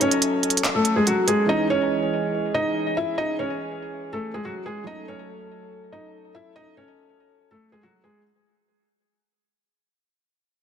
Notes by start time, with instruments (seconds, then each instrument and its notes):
Already playing: grand piano F#3 A3 C#4 A4, french horn section F#3 C#4 A4
0.01 felt piano C#4 C#5, closed hi-hat
0.11 closed hi-hat
0.22 closed hi-hat
0.43 closed hi-hat
0.50 closed hi-hat
0.57 closed hi-hat
0.64 clap, closed hi-hat
0.75 felt piano A3 A4
0.85 closed hi-hat
0.96 felt piano G#3 G#4
1.07 felt piano F#3 F#4, closed hi-hat
1.28 felt piano G#3 G#4, closed hi-hat
1.46 grand piano E3 G#3 C#4, french horn section E3 G#4, felt piano D#4 D#5
1.52 grand piano G#4
1.70 felt piano C#4 C#5
2.54 felt piano D#4 D#5
2.97 felt piano E4 E5
3.18 felt piano D#4 D#5
3.39 felt piano C#4 C#5
4.13 felt piano A3 A4
4.34 felt piano G#3 G#4
4.45 felt piano F#3 F#4
4.66 felt piano G#3 G#4
4.84 grand piano F#3 A3 C#4, french horn section F#3 C#4 A4, felt piano D#4 D#5
4.89 grand piano A4
5.08 felt piano C#4 C#5
5.92 felt piano D#4 D#5
6.35 felt piano E4 E5
6.56 felt piano D#4 D#5
6.77 felt piano C#4 C#5
7.51 felt piano A3 A4
7.72 felt piano G#3 G#4
7.83 felt piano F#3 F#4
8.04 felt piano G#3 G#4